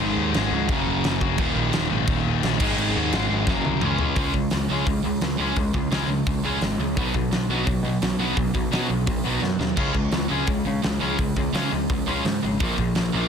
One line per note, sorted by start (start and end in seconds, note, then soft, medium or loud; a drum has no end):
0.00 0.16 G#1 loud
0.00 0.32 G#2 loud
0.00 0.34 D#3 loud
0.00 0.35 G#3 loud
0.16 0.33 D#2 loud
0.33 0.50 G#1 medium
0.33 0.68 G#2 medium
0.33 0.69 D#3 medium
0.33 0.69 G#3 medium
0.33 snare loud
0.33 crash medium
0.51 0.68 C#2 medium
0.69 0.85 F#1 medium
0.69 1.20 F#2 medium
0.69 1.21 C#3 loud
0.69 1.20 F#3 loud
0.69 kick loud
0.69 crash medium
0.87 1.03 F#1 loud
1.04 1.21 F#1 loud
1.04 snare loud
1.04 crash medium
1.21 1.38 F#1 medium
1.21 1.38 F#2 medium
1.21 1.38 C#3 medium
1.21 1.38 F#3 medium
1.21 kick medium
1.38 1.55 D#1 medium
1.38 1.90 D#2 loud
1.38 1.90 A#2 loud
1.38 1.88 D#3 loud
1.38 kick loud
1.38 crash medium
1.55 1.72 A#1 loud
1.73 1.90 D#1 medium
1.73 snare loud
1.73 crash medium
1.90 2.07 G#1 medium
1.90 2.41 D#2 medium
1.90 2.42 A#2 medium
1.90 2.41 D#3 medium
2.07 2.24 D#1 medium
2.07 kick loud
2.07 crash medium
2.25 2.42 D#1 loud
2.42 2.59 A#1 loud
2.42 2.59 D#2 medium
2.42 2.58 A#2 medium
2.42 2.60 D#3 loud
2.42 snare loud
2.42 crash medium
2.59 2.76 G#1 loud
2.59 3.11 G#2 medium
2.59 3.12 D#3 loud
2.59 3.12 G#3 loud
2.59 kick loud
2.59 crash loud
2.77 2.94 G#1 loud
2.77 crash medium
2.96 3.12 D#2 loud
3.12 3.29 G#1 medium
3.12 3.46 G#2 medium
3.12 3.47 D#3 medium
3.12 3.48 G#3 medium
3.12 snare loud
3.12 crash medium
3.30 3.47 G#1 medium
3.47 3.64 F#1 medium
3.47 3.81 F#2 medium
3.47 3.80 C#3 loud
3.47 3.83 F#3 loud
3.47 kick loud
3.47 snare medium
3.65 3.81 C2 loud
3.65 high tom medium
3.81 3.99 C#2 medium
3.81 4.16 C#3 loud
3.81 4.16 G#3 loud
3.81 4.17 C#4 loud
3.81 mid tom loud
3.98 4.16 C#2 medium
3.98 floor tom loud
4.16 4.30 C#2 loud
4.16 4.33 C#3 medium
4.16 4.34 G#3 medium
4.16 4.34 C#4 loud
4.16 kick loud
4.16 open hi-hat medium
4.34 4.47 C#2 medium
4.34 4.50 C#3 medium
4.34 4.50 G#3 medium
4.34 kick medium
4.50 4.66 C#2 medium
4.50 4.67 C#3 medium
4.50 4.68 G#3 medium
4.50 snare loud
4.50 open hi-hat medium
4.70 4.83 C#2 medium
4.70 4.86 C#3 medium
4.70 4.86 G#3 medium
4.70 4.87 C#4 medium
4.86 5.00 C#2 medium
4.86 5.03 C#3 medium
4.86 5.03 G#3 medium
4.86 kick loud
4.86 open hi-hat medium
5.04 5.18 C#2 medium
5.04 5.20 C#3 medium
5.04 5.20 G#3 medium
5.21 5.35 C#2 medium
5.21 5.37 C#3 medium
5.21 5.38 G#3 medium
5.21 snare loud
5.21 open hi-hat medium
5.39 5.52 C#2 medium
5.39 5.56 C#3 medium
5.39 5.56 G#3 loud
5.39 5.56 C#4 loud
5.56 5.70 C#2 medium
5.56 5.73 C#3 medium
5.56 5.73 G#3 medium
5.56 kick loud
5.56 open hi-hat medium
5.74 5.87 C#2 medium
5.74 5.90 C#3 medium
5.74 5.90 G#3 medium
5.74 kick medium
5.91 6.04 C#2 medium
5.91 6.07 C#3 medium
5.91 6.08 G#3 medium
5.91 6.09 C#4 loud
5.91 snare loud
5.91 open hi-hat medium
6.07 6.21 C#2 medium
6.07 6.25 C#3 medium
6.07 6.25 G#3 medium
6.26 6.40 C#2 medium
6.26 6.42 C#3 medium
6.26 6.43 G#3 medium
6.26 kick loud
6.26 open hi-hat medium
6.43 6.57 C#2 medium
6.43 6.61 C#3 medium
6.43 6.61 G#3 medium
6.43 6.61 C#4 loud
6.61 6.75 G#1 loud
6.61 6.78 C#3 medium
6.61 6.78 G#3 medium
6.61 snare medium
6.61 open hi-hat medium
6.77 6.97 C#2 medium
6.77 6.95 C#3 medium
6.77 6.95 G#3 medium
6.97 7.10 B1 loud
6.97 7.14 B2 medium
6.97 7.14 F#3 medium
6.97 7.14 B3 loud
6.97 kick loud
6.97 open hi-hat medium
7.14 7.28 B1 medium
7.14 7.31 B2 medium
7.14 7.31 F#3 medium
7.14 kick medium
7.30 7.44 B1 medium
7.30 7.48 B2 medium
7.30 7.48 F#3 medium
7.30 snare loud
7.30 open hi-hat medium
7.48 7.62 B1 medium
7.48 7.65 B2 medium
7.48 7.66 F#3 medium
7.48 7.67 B3 medium
7.67 7.80 B1 medium
7.67 7.83 B2 medium
7.67 7.83 F#3 medium
7.67 kick loud
7.67 open hi-hat medium
7.83 7.97 B2 medium
7.83 8.01 B2 medium
7.83 8.01 F#3 medium
8.02 8.15 B1 medium
8.02 8.18 B2 medium
8.02 8.18 F#3 medium
8.02 snare loud
8.02 open hi-hat medium
8.18 8.32 B1 medium
8.18 8.35 B2 medium
8.18 8.35 F#3 medium
8.18 8.36 B3 loud
8.36 8.50 B1 loud
8.36 8.52 B2 medium
8.36 8.53 F#3 medium
8.36 kick loud
8.36 open hi-hat medium
8.54 8.68 B1 medium
8.54 8.70 B2 medium
8.54 8.70 F#3 medium
8.54 kick loud
8.71 8.88 B2 medium
8.71 8.86 B2 medium
8.71 8.89 F#3 loud
8.71 8.89 B3 loud
8.71 snare loud
8.71 open hi-hat medium
8.89 9.03 B1 medium
8.89 9.05 B2 medium
8.89 9.06 F#3 medium
9.07 9.21 B1 medium
9.07 9.23 B2 medium
9.07 9.23 F#3 medium
9.07 kick loud
9.07 open hi-hat medium
9.24 9.39 B1 medium
9.24 9.40 B2 medium
9.24 9.41 F#3 medium
9.24 9.41 B3 loud
9.41 9.56 F#2 medium
9.41 9.58 B2 medium
9.41 9.58 F#3 medium
9.41 snare medium
9.59 9.73 D#2 medium
9.59 9.76 B2 medium
9.59 9.76 F#3 medium
9.59 snare loud
9.77 9.91 C#2 medium
9.77 9.93 C#3 medium
9.77 9.93 G#3 medium
9.77 9.94 C#4 loud
9.77 kick loud
9.77 crash medium
9.94 10.08 C#2 medium
9.94 10.11 C#3 medium
9.94 10.11 G#3 medium
9.94 kick medium
10.12 10.26 C#2 medium
10.12 10.28 C#3 medium
10.12 10.29 G#3 medium
10.12 snare loud
10.12 open hi-hat medium
10.29 10.44 C#2 medium
10.29 10.46 C#3 medium
10.29 10.47 G#3 medium
10.29 10.47 C#4 loud
10.47 10.61 C#2 medium
10.47 10.64 C#3 medium
10.47 10.64 G#3 medium
10.47 kick loud
10.47 open hi-hat medium
10.65 10.81 C#3 medium
10.65 10.80 C#3 medium
10.65 10.82 G#3 medium
10.83 10.98 C#2 medium
10.83 10.99 C#3 medium
10.83 10.99 G#3 medium
10.83 snare loud
10.83 open hi-hat medium
11.00 11.15 C#2 medium
11.00 11.17 C#3 medium
11.00 11.18 G#3 loud
11.00 11.18 C#4 loud
11.18 11.32 C#2 medium
11.18 11.35 C#3 medium
11.18 11.35 G#3 medium
11.18 kick loud
11.18 open hi-hat medium
11.37 11.50 C#2 medium
11.37 11.53 C#3 medium
11.37 11.53 G#3 medium
11.37 kick medium
11.54 11.71 C#3 medium
11.54 11.68 C#3 medium
11.54 11.71 G#3 loud
11.54 11.71 C#4 loud
11.54 snare loud
11.54 open hi-hat medium
11.72 11.86 C#2 medium
11.72 11.88 C#3 medium
11.72 11.88 G#3 medium
11.90 12.03 C#2 medium
11.90 12.06 C#3 medium
11.90 12.06 G#3 medium
11.90 kick loud
11.90 open hi-hat medium
12.07 12.21 C#2 medium
12.07 12.24 C#3 medium
12.07 12.24 G#3 loud
12.07 12.24 C#4 medium
12.25 12.38 G#2 loud
12.25 12.42 C#3 medium
12.25 12.42 G#3 medium
12.25 snare medium
12.25 open hi-hat medium
12.43 12.56 G#1 medium
12.43 12.59 C#3 medium
12.43 12.59 G#3 medium
12.60 12.74 A#1 loud
12.60 12.77 A#2 medium
12.60 12.77 F3 loud
12.60 12.78 A#3 loud
12.60 kick loud
12.60 open hi-hat medium
12.78 12.92 A#1 medium
12.78 12.95 A#2 medium
12.78 12.95 F3 medium
12.78 kick medium
12.95 13.10 A#1 medium
12.95 13.12 A#2 medium
12.95 13.12 F3 medium
12.95 snare loud
12.95 open hi-hat medium
13.14 13.27 A#1 medium
13.14 13.28 A#2 medium
13.14 13.28 F3 medium
13.14 13.28 A#3 loud